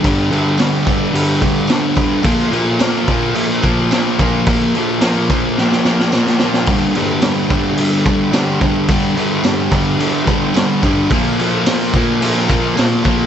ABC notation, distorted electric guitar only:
X:1
M:4/4
L:1/8
Q:1/4=108
K:Gm
V:1 name="Distorted electric guitar" clef=bass
[G,,D,G,] [G,,D,G,] [G,,D,G,] [G,,D,G,] [G,,D,G,] [G,,D,G,] [G,,D,G,] [G,,D,G,] | [B,,F,B,] [B,,F,B,] [B,,F,B,] [B,,F,B,] [B,,F,B,] [B,,F,B,] [B,,F,B,] [B,,F,B,] | [B,,F,B,] [B,,F,B,] [B,,F,B,] [B,,F,B,] [B,,F,B,] [B,,F,B,] [B,,F,B,] [B,,F,B,] | [G,,D,G,] [G,,D,G,] [G,,D,G,] [G,,D,G,] [G,,D,G,] [G,,D,G,] [G,,D,G,] [G,,D,G,] |
[G,,D,G,] [G,,D,G,] [G,,D,G,] [G,,D,G,] [G,,D,G,] [G,,D,G,] [G,,D,G,] [G,,D,G,] | [B,,F,B,] [B,,F,B,] [B,,F,B,] [B,,F,B,] [B,,F,B,] [B,,F,B,] [B,,F,B,] [B,,F,B,] |]